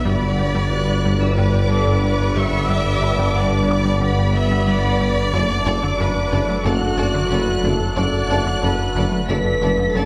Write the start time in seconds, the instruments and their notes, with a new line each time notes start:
0.05 double bass section G1, sub bass G1, tuba G1, analog synth bass G2, cello section G2, analog synth pad D3 G3 B3 B4, synth arpeggio sound G3, french horn section B3, violin section B4 D5 B5, viola section D5
0.23 analog synth bass G2
0.39 analog synth bass G2, synth arpeggio sound G4
0.55 analog synth bass G2, synth arpeggio sound G3
0.72 analog synth bass G2, synth arpeggio sound B3, french horn section F#4, violin section F#6
0.89 analog synth bass G2
1.05 analog synth bass G2, synth arpeggio sound G3
1.22 analog synth bass G3, synth arpeggio sound D4, french horn section E4, violin section E6
1.37 analog synth bass G2, synth arpeggio sound G3, french horn section D4, viola section B4, violin section D6
1.54 analog synth bass G2, synth arpeggio sound G4
1.71 analog synth bass G3, viola section A4
1.87 analog synth bass G2, synth arpeggio sound G3
2.04 analog synth bass G3, viola section B4
2.20 analog synth bass G2
2.36 analog synth bass G2, french horn section C#3, synth arpeggio sound G3, viola section E5, violin section C#6
2.53 analog synth bass G2
2.69 analog synth bass G2, synth arpeggio sound G3, french horn section D4, violin section D6
2.85 analog synth bass G2
3.02 analog synth bass G2, synth arpeggio sound G4, felt piano B4 B5
3.18 analog synth bass G2, synth arpeggio sound G3
3.35 analog synth bass G2, synth arpeggio sound B3, viola section D5
3.51 analog synth bass G2
3.68 analog synth bass G2, synth arpeggio sound G3, viola section D5, felt piano D6
3.85 analog synth bass G3, synth arpeggio sound D4
4.00 analog synth bass G2, synth arpeggio sound G3, french horn section B3, viola section D5, violin section B5
4.18 analog synth bass G2, synth arpeggio sound G4
4.35 analog synth bass G3, viola section E5
4.51 analog synth bass G2, synth arpeggio sound G3
4.68 analog synth bass G3, viola section D5
4.84 analog synth bass G2
5.01 analog synth bass G2, synth arpeggio sound G3
5.17 analog synth bass G2
5.32 tuba F#1, double bass section F#1, sub bass F#1, cello section F#2, analog synth bass F#2, synth arpeggio sound D3, analog synth pad F#3 A3 D4 A4, french horn section D4, violin section A4 D5 D6
5.51 analog synth bass F#2
5.65 tuba F#1, double bass section F#1, cello section F#2, analog synth bass F#2, synth arpeggio sound D4, violin section A4 D5
5.83 analog synth bass F#2, synth arpeggio sound D3
5.99 tuba F#1, double bass section F#1, cello section F#2, analog synth bass F#2, synth arpeggio sound F#3, violin section A4 D5, viola section B4
6.17 analog synth bass F#2
6.31 tuba F#1, double bass section F#1, cello section F#2, analog synth bass F#2, synth arpeggio sound D3, violin section A4 D5
6.49 analog synth bass F#3, synth arpeggio sound A3
6.64 tuba F#1, double bass section F#1, analog synth bass F#2, cello section F#2, synth arpeggio sound D3, french horn section F#4, violin section A4 D5 F#6, viola section A4
6.81 analog synth bass F#2, synth arpeggio sound D4
6.97 tuba F#1, double bass section F#1, cello section F#2, analog synth bass F#3, violin section A4 D5, viola section D5
7.14 analog synth bass F#2, synth arpeggio sound D3
7.30 tuba F#1, double bass section F#1, cello section F#2, analog synth bass F#3, violin section A4 D5, viola section B4
7.47 analog synth bass F#2
7.63 tuba F#1, double bass section F#1, analog synth bass F#2, cello section F#2, synth arpeggio sound D3, violin section A4 D5, viola section A4
7.81 analog synth bass F#2
7.96 tuba F#1, double bass section F#1, analog synth bass F#2, cello section F#2, synth arpeggio sound D3, french horn section F#4, violin section A4 D5 F#6, viola section D5
8.13 analog synth bass F#2
8.29 tuba F#1, double bass section F#1, analog synth bass F#2, cello section F#2, synth arpeggio sound D4, violin section A4 D5, felt piano A5
8.45 analog synth bass F#2, synth arpeggio sound D3
8.62 tuba F#1, double bass section F#1, analog synth bass F#2, cello section F#2, synth arpeggio sound F#3, violin section A4 D5, viola section B4
8.79 analog synth bass F#2
8.95 tuba F#1, double bass section F#1, analog synth bass F#2, cello section F#2, synth arpeggio sound D3, violin section A4 D5
9.12 analog synth bass F#3, synth arpeggio sound A3
9.28 tuba F#1, double bass section F#1, analog synth bass F#2, cello section F#2, synth arpeggio sound D3, violin section A4 D5 B6, viola section A4, french horn section B4
9.45 analog synth bass F#2, synth arpeggio sound D4
9.61 tuba F#1, double bass section F#1, cello section F#2, analog synth bass F#3, violin section A4 D5
9.78 analog synth bass F#2, synth arpeggio sound D3
9.94 tuba F#1, double bass section F#1, cello section F#2, analog synth bass F#3, french horn section A4, violin section A4 D5 A6